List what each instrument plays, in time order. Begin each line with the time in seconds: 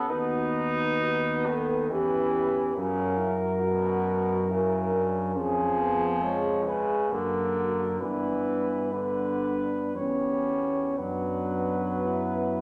Already playing: cornet A4
0.08 tuba D#2, euphonium B3, trombone D#4, french horn section F#4, cornet B4
1.00 euphonium B3, french horn section F#4
1.46 trombone D#3, french horn section A4
1.89 tuba E2, trombone E3, euphonium C#4, french horn section G4, cornet B4
2.75 tuba F#2, trombone C#3, euphonium C#4, french horn section F#4, cornet A#4
3.18 euphonium E4
3.61 trombone B2, euphonium F#4, french horn section F#4
4.48 trombone C#3, euphonium E4, french horn section A#4
4.92 euphonium D4
5.35 tuba F2, trombone F3, euphonium C#4, french horn section G#4, cornet G#4
5.78 euphonium B3
6.22 euphonium G#3, french horn section G#4, cornet C#5
6.67 trombone C#3, cornet B4
7.09 tuba F#2, trombone D3, euphonium A#3, french horn section F#4, cornet A#4
8.00 tuba G2, trombone E3, euphonium B3, french horn section D4, cornet B4
8.92 trombone D3, euphonium B3, french horn section D4, cornet B4
9.95 tuba E2, trombone G3, euphonium B3, french horn section C#4, cornet C#5
10.98 tuba F#2, trombone F#3, euphonium B3, french horn section D4, cornet B4
12.03 french horn section E4